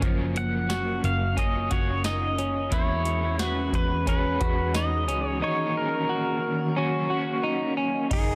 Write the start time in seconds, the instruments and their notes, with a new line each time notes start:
Already playing: ambient pad A#3 C#4 A#4
0.00 picked electric bass F#1, clean electric guitar F3, overdriven electric guitar F#3 A#3, kick, closed hi-hat
0.05 overdriven electric guitar C#4
0.36 pedal steel guitar F#5, closed hi-hat
0.69 clean electric guitar F#4, snare, closed hi-hat, tambourine
1.04 picked electric bass F#1, pedal steel guitar F5, closed hi-hat
1.36 overdriven electric guitar F#3 A#3 C#4, clean electric guitar C#4, pedal steel guitar D#5, kick, closed hi-hat
1.40 overdriven electric guitar F4
1.70 picked electric bass F#1, overdriven electric guitar C#4 F4, clean electric guitar F#4, pedal steel guitar C#5, kick, closed hi-hat
1.74 overdriven electric guitar A#3
2.04 clean electric guitar D#4, pedal steel guitar D#5, snare, closed hi-hat, tambourine
2.38 clean electric guitar C#4, closed hi-hat
2.70 picked electric bass E2, overdriven electric guitar E3 G#3, ambient pad E3 F#4 G#4, clean electric guitar E4, pedal steel guitar C#5, kick, closed hi-hat
2.75 overdriven electric guitar C#4 F#4
3.05 closed hi-hat
3.39 clean electric guitar F#4, snare, closed hi-hat, tambourine
3.46 pedal steel guitar B4
3.73 picked electric bass E2, pedal steel guitar B4, kick, closed hi-hat
4.06 overdriven electric guitar E3 G#3 C#4 F#4, clean electric guitar C#4, pedal steel guitar B4, kick, closed hi-hat
4.39 picked electric bass E2, overdriven electric guitar C#4 F#4, clean electric guitar F#4, kick, closed hi-hat
4.44 overdriven electric guitar G#3
4.74 clean electric guitar D#4, pedal steel guitar D#5, snare, closed hi-hat, tambourine
5.08 picked electric bass C#2, clean electric guitar C#4, closed hi-hat
5.27 pedal steel guitar C#5
5.40 overdriven electric guitar D#3 A#3, ambient pad C#4, clean electric guitar D#4
5.44 overdriven electric guitar C#4 F#4, pedal steel guitar C#5
5.77 pedal steel guitar A#4
6.09 clean electric guitar F#4
6.75 overdriven electric guitar F#3 A#3 C#4, clean electric guitar C#4, pedal steel guitar F#4
7.10 overdriven electric guitar A#3 C#4, clean electric guitar F#4
7.43 clean electric guitar D#4
7.77 clean electric guitar C#4
8.10 picked electric bass F#1, overdriven electric guitar F#3 C#4 D#4 A#4, clean electric guitar D#4, pedal steel guitar G#4, kick, crash, ride